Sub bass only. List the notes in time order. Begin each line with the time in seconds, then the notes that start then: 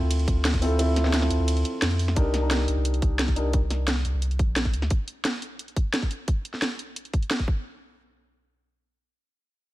0.02 D2
0.28 D2
1.31 D2
1.40 D2
1.82 F2
2.17 C2
2.68 C2
2.77 C2
3.02 C2
4.05 C2
4.14 C2
4.39 A#1
4.74 D2